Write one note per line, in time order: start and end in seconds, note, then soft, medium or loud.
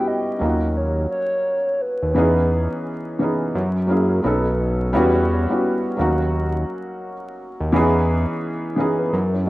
0.00 0.43 G3 medium
0.00 0.43 B3 medium
0.00 0.41 C#4 medium
0.00 0.43 E4 medium
0.00 0.38 F#4 medium
0.00 0.43 G4 loud
0.07 0.78 D#5 loud
0.39 1.07 D#2 medium
0.39 1.53 F#3 medium
0.39 1.54 A#3 medium
0.39 1.54 C#4 medium
0.39 1.55 D#4 medium
0.39 0.50 F4 medium
0.49 1.58 F#4 medium
0.77 1.11 C#5 medium
1.11 1.83 C#5 loud
1.82 2.86 B4 medium
2.03 2.15 D#2 medium
2.14 2.68 E2 loud
2.14 2.89 E3 medium
2.14 2.89 B3 medium
2.14 2.90 C#4 medium
2.14 2.90 D#4 medium
2.18 2.91 G#4 medium
3.19 3.54 E3 medium
3.19 3.55 B3 medium
3.19 3.55 C#4 medium
3.19 3.56 D#4 medium
3.19 3.56 G#4 medium
3.55 4.21 F#2 loud
3.87 4.21 F#3 medium
3.87 4.24 A#3 medium
3.87 4.23 C#4 medium
3.87 4.25 E4 medium
3.91 4.25 G#4 medium
4.22 4.96 B1 loud
4.22 4.83 F#3 medium
4.22 4.83 B3 medium
4.22 4.84 C#4 medium
4.22 4.84 D#4 medium
4.27 4.85 A4 medium
4.93 5.47 E2 loud
4.93 5.31 G3 loud
4.93 5.31 B3 loud
4.93 5.32 C#4 loud
4.93 5.32 E4 medium
4.93 5.33 F#4 loud
5.48 5.95 G3 medium
5.48 5.96 B3 medium
5.48 5.96 C#4 medium
5.48 5.97 E4 medium
5.53 5.97 F#4 medium
5.97 6.65 D#2 medium
5.97 7.11 F#3 medium
5.97 7.12 A#3 medium
5.97 7.12 C#4 medium
5.97 7.13 D#4 medium
5.97 7.13 F#4 loud
7.60 7.73 D#2 loud
7.72 8.26 E2 loud
7.72 8.47 E3 loud
7.72 8.47 B3 medium
7.72 8.48 C#4 loud
7.72 8.48 D#4 medium
7.72 8.49 G#4 loud
8.76 9.12 E3 medium
8.76 9.12 B3 medium
8.76 8.99 B3 medium
8.76 9.13 C#4 medium
8.76 9.13 D#4 medium
8.76 8.98 G#4 medium
8.80 9.14 G#4 loud
8.99 9.12 D#4 medium
8.99 9.12 B4 medium
9.12 9.49 F#2 loud
9.12 9.33 C#4 medium
9.12 9.33 A#4 medium
9.34 9.47 E4 medium
9.34 9.47 C#5 medium
9.46 9.49 F#3 medium